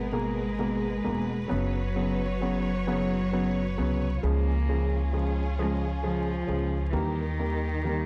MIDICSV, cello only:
0, 0, Header, 1, 2, 480
1, 0, Start_track
1, 0, Tempo, 906344
1, 801, Time_signature, 6, 3, 24, 8
1, 4268, End_track
2, 0, Start_track
2, 0, Title_t, "Cello"
2, 0, Program_c, 0, 42
2, 0, Note_on_c, 0, 59, 73
2, 65, Note_off_c, 0, 59, 0
2, 91, Note_on_c, 0, 56, 80
2, 822, Note_on_c, 0, 54, 74
2, 830, Note_off_c, 0, 56, 0
2, 1533, Note_off_c, 0, 54, 0
2, 1540, Note_on_c, 0, 54, 75
2, 2049, Note_off_c, 0, 54, 0
2, 2256, Note_on_c, 0, 58, 65
2, 2704, Note_off_c, 0, 58, 0
2, 2970, Note_on_c, 0, 56, 80
2, 3075, Note_off_c, 0, 56, 0
2, 3193, Note_on_c, 0, 53, 86
2, 3655, Note_on_c, 0, 52, 43
2, 3663, Note_off_c, 0, 53, 0
2, 3672, Note_on_c, 0, 51, 68
2, 3680, Note_off_c, 0, 52, 0
2, 4268, Note_off_c, 0, 51, 0
2, 4268, End_track
0, 0, End_of_file